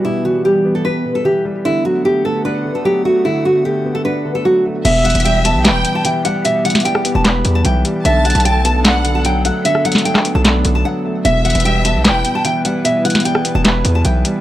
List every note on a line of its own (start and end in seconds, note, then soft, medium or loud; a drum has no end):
0.00 0.05 B2 medium
0.00 0.25 E3 medium
0.00 1.62 E3 medium
0.00 0.45 G3 medium
0.00 1.62 G3 medium
0.00 0.65 B3 medium
0.00 4.81 B3 medium
0.00 1.62 G4 medium
0.00 0.25 B4 medium
0.05 1.03 B2 medium
0.05 0.23 E4 medium
0.25 1.23 E3 medium
0.25 0.43 F#4 medium
0.45 1.43 G3 medium
0.45 0.73 G4 medium
0.65 1.65 B3 medium
0.75 0.84 A4 medium
0.85 1.13 B4 medium
0.85 1.65 B4 loud
1.05 1.65 B2 medium
1.15 1.24 A4 medium
1.25 1.65 E3 medium
1.25 1.43 G4 medium
1.45 1.65 G3 medium
1.65 2.63 D3 medium
1.65 4.82 D3 medium
1.65 4.82 A3 medium
1.65 1.83 E4 loud
1.65 4.82 F#5 medium
1.85 2.83 F#3 medium
1.85 2.03 F#4 medium
2.05 3.03 A3 medium
2.05 2.23 G4 medium
2.25 3.25 B3 medium
2.25 2.43 A4 medium
2.45 3.45 D4 loud
2.45 2.73 B4 medium
2.65 3.23 D3 medium
2.75 2.84 A4 medium
2.85 3.85 F#3 medium
2.85 3.03 G4 medium
3.05 3.64 A3 medium
3.05 3.23 F#4 medium
3.25 4.23 D3 medium
3.25 3.43 E4 medium
3.45 3.63 F#4 medium
3.65 4.63 A3 medium
3.65 3.93 G4 medium
3.85 4.85 B3 medium
3.95 4.04 A4 medium
4.05 4.85 D4 loud
4.05 4.33 B4 medium
4.25 4.85 D3 medium
4.35 4.44 A4 medium
4.45 4.85 F#3 medium
4.45 4.63 F#4 medium
4.65 4.85 A3 medium
4.85 5.14 E1 loud
4.85 5.84 B2 loud
4.85 8.02 E3 medium
4.85 8.02 G3 medium
4.85 14.41 B3 medium
4.85 8.02 G4 loud
4.85 5.03 E5 loud
4.85 5.61 E5 loud
4.85 closed hi-hat medium
4.85 crash loud
5.05 6.04 E3 medium
5.05 5.23 F#5 medium
5.05 closed hi-hat medium
5.10 closed hi-hat medium
5.15 5.57 E1 loud
5.15 closed hi-hat medium
5.20 closed hi-hat medium
5.25 6.24 G3 medium
5.25 5.43 G5 medium
5.25 closed hi-hat medium
5.45 6.45 B3 medium
5.45 5.63 A5 medium
5.45 closed hi-hat medium
5.55 5.72 B1 loud
5.65 6.65 B4 loud
5.65 6.03 G5 medium
5.65 5.93 B5 medium
5.65 snare loud
5.65 clap medium
5.65 closed hi-hat medium
5.70 5.84 E1 loud
5.85 6.44 B2 medium
5.85 closed hi-hat medium
5.95 6.04 A5 medium
6.05 6.64 E3 medium
6.05 6.23 G5 medium
6.05 closed hi-hat medium
6.25 6.84 G3 medium
6.25 6.43 F#5 medium
6.25 closed hi-hat medium
6.45 7.43 B2 medium
6.45 6.63 E5 medium
6.45 closed hi-hat medium
6.65 7.64 E3 medium
6.65 6.83 F#5 medium
6.65 closed hi-hat medium
6.70 closed hi-hat medium
6.75 snare medium
6.75 closed hi-hat medium
6.80 closed hi-hat medium
6.85 7.83 G3 medium
6.85 7.13 G5 medium
6.85 closed hi-hat medium
6.95 cross-stick medium
7.05 8.05 B3 medium
7.05 closed hi-hat medium
7.15 7.44 E1 loud
7.15 7.24 A5 medium
7.25 8.05 B4 loud
7.25 7.53 B5 medium
7.25 snare loud
7.25 clap medium
7.25 closed hi-hat medium
7.45 7.64 E2 loud
7.45 8.05 B2 medium
7.45 closed hi-hat medium
7.55 7.64 A5 medium
7.65 7.84 B1 loud
7.65 8.05 E3 medium
7.65 7.83 G5 medium
7.65 closed hi-hat medium
7.85 8.05 G3 medium
7.85 closed hi-hat medium
8.05 8.34 B1 loud
8.05 9.03 D3 loud
8.05 11.22 F#3 medium
8.05 11.22 D4 medium
8.05 11.22 A4 medium
8.05 8.23 E5 loud
8.05 8.81 A5 loud
8.05 closed hi-hat medium
8.25 9.24 F#3 medium
8.25 8.43 F#5 medium
8.25 closed hi-hat medium
8.30 closed hi-hat medium
8.35 9.51 B1 loud
8.35 closed hi-hat medium
8.40 closed hi-hat medium
8.45 9.43 A3 medium
8.45 8.63 G5 medium
8.45 closed hi-hat medium
8.65 9.65 B3 medium
8.65 8.83 A5 medium
8.65 closed hi-hat medium
8.85 9.85 D4 loud
8.85 9.23 F#5 medium
8.85 9.13 B5 medium
8.85 snare loud
8.85 clap medium
8.85 closed hi-hat medium
9.05 9.63 D3 medium
9.05 closed hi-hat medium
9.15 9.24 A5 medium
9.25 9.83 F#3 medium
9.25 9.43 G5 medium
9.25 closed hi-hat medium
9.45 10.03 A3 medium
9.45 9.63 F#5 medium
9.45 closed hi-hat medium
9.65 10.64 D3 loud
9.65 9.83 E5 loud
9.65 closed hi-hat medium
9.75 cross-stick medium
9.85 10.84 F#3 medium
9.85 10.03 F#5 medium
9.85 closed hi-hat medium
9.92 snare medium
9.92 closed hi-hat medium
9.98 closed hi-hat medium
10.05 11.04 A3 medium
10.05 10.33 G5 medium
10.05 closed hi-hat medium
10.15 cross-stick loud
10.15 snare medium
10.15 clap medium
10.25 11.25 B3 medium
10.25 closed hi-hat medium
10.35 10.64 B1 loud
10.35 10.44 A5 medium
10.45 11.25 D4 loud
10.45 10.73 B5 medium
10.45 snare loud
10.45 clap medium
10.45 closed hi-hat medium
10.65 10.84 B1 loud
10.65 11.25 D3 medium
10.65 closed hi-hat medium
10.75 10.84 A5 medium
10.85 11.25 F#3 medium
10.85 11.03 F#5 medium
11.05 11.25 A3 medium
11.25 11.54 E1 loud
11.25 12.23 B2 loud
11.25 14.41 G3 medium
11.25 14.41 E4 medium
11.25 14.41 B4 loud
11.25 11.43 E5 loud
11.25 12.01 E5 loud
11.25 closed hi-hat medium
11.45 12.43 E3 medium
11.45 11.63 F#5 medium
11.45 closed hi-hat medium
11.50 closed hi-hat medium
11.55 11.97 E1 loud
11.55 closed hi-hat medium
11.60 closed hi-hat medium
11.65 12.63 G3 medium
11.65 11.83 G5 medium
11.65 closed hi-hat medium
11.85 12.85 B3 medium
11.85 12.03 A5 medium
11.85 closed hi-hat medium
11.95 12.11 B1 loud
12.05 13.05 B4 loud
12.05 12.43 G5 medium
12.05 12.33 B5 medium
12.05 snare loud
12.05 clap medium
12.05 closed hi-hat medium
12.10 12.24 E1 loud
12.25 12.83 B2 medium
12.25 closed hi-hat medium
12.35 12.44 A5 medium
12.45 13.03 E3 medium
12.45 12.63 G5 medium
12.45 closed hi-hat medium
12.65 13.23 G3 medium
12.65 12.83 F#5 medium
12.65 closed hi-hat medium
12.85 13.84 B2 medium
12.85 13.03 E5 loud
12.85 closed hi-hat medium
13.05 14.04 E3 medium
13.05 13.23 F#5 medium
13.05 closed hi-hat medium
13.10 closed hi-hat medium
13.15 snare medium
13.15 closed hi-hat medium
13.20 closed hi-hat medium
13.25 14.24 G3 medium
13.25 13.53 G5 medium
13.25 closed hi-hat medium
13.35 cross-stick medium
13.45 14.41 B3 medium
13.45 closed hi-hat medium
13.55 13.84 E1 loud
13.55 13.64 A5 medium
13.65 14.41 B4 loud
13.65 13.93 B5 medium
13.65 snare loud
13.65 clap medium
13.65 closed hi-hat medium
13.85 14.04 E2 loud
13.85 14.41 B2 medium
13.85 closed hi-hat medium
13.95 14.04 A5 medium
14.05 14.24 B1 loud
14.05 14.41 E3 medium
14.05 14.23 G5 medium
14.05 closed hi-hat medium
14.25 14.41 G3 medium
14.25 closed hi-hat medium